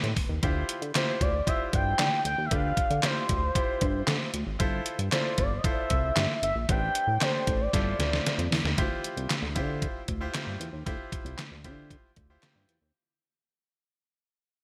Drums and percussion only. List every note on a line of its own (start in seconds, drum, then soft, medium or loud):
0.04 closed hi-hat soft
0.17 kick medium
0.17 open hi-hat medium
0.43 kick loud
0.43 closed hi-hat medium
0.69 closed hi-hat medium
0.82 closed hi-hat soft
0.95 snare loud
0.95 clap medium
0.95 closed hi-hat loud
1.21 kick medium
1.21 closed hi-hat medium
1.47 kick medium
1.47 closed hi-hat loud
1.73 kick medium
1.73 closed hi-hat medium
1.99 snare loud
1.99 clap medium
1.99 closed hi-hat loud
2.25 closed hi-hat medium
2.51 kick loud
2.51 closed hi-hat medium
2.77 kick loud
2.77 closed hi-hat medium
2.91 closed hi-hat soft
3.03 snare loud
3.03 clap medium
3.03 closed hi-hat loud
3.29 kick medium
3.29 closed hi-hat medium
3.55 kick loud
3.55 closed hi-hat loud
3.81 kick medium
3.81 closed hi-hat medium
4.08 snare loud
4.08 clap medium
4.08 closed hi-hat loud
4.34 closed hi-hat medium
4.60 kick loud
4.60 closed hi-hat medium
4.86 closed hi-hat medium
4.99 closed hi-hat soft
5.12 snare loud
5.12 clap medium
5.12 closed hi-hat medium
5.38 kick medium
5.38 closed hi-hat medium
5.64 kick loud
5.64 closed hi-hat medium
5.90 kick medium
5.90 closed hi-hat medium
6.16 snare loud
6.16 clap medium
6.16 closed hi-hat loud
6.43 closed hi-hat medium
6.69 kick loud
6.69 closed hi-hat medium
6.95 closed hi-hat medium
7.21 snare loud
7.21 clap medium
7.21 closed hi-hat loud
7.47 kick medium
7.47 closed hi-hat medium
7.73 kick loud
7.73 snare medium
7.73 closed hi-hat loud
8.00 snare medium
8.00 closed hi-hat medium
8.13 snare medium
8.26 snare medium
8.26 closed hi-hat medium
8.39 closed hi-hat medium
8.52 snare loud
8.52 open hi-hat medium
8.65 snare medium
8.78 kick loud
8.78 closed hi-hat medium
9.04 closed hi-hat medium
9.17 closed hi-hat soft
9.30 snare loud
9.30 clap medium
9.30 closed hi-hat medium
9.56 kick medium
9.56 closed hi-hat medium
9.82 kick loud
9.82 closed hi-hat medium
10.08 kick medium
10.08 closed hi-hat medium
10.34 snare loud
10.34 clap medium
10.34 closed hi-hat loud
10.61 closed hi-hat medium
10.87 kick loud
10.87 closed hi-hat medium
11.12 kick loud
11.12 closed hi-hat medium
11.26 closed hi-hat soft
11.38 snare loud
11.38 clap medium
11.38 closed hi-hat medium
11.64 kick medium
11.64 closed hi-hat medium
11.91 kick loud
11.91 closed hi-hat medium
12.16 kick medium
12.16 closed hi-hat medium
12.43 snare loud
12.43 clap medium
12.43 closed hi-hat medium
12.69 closed hi-hat medium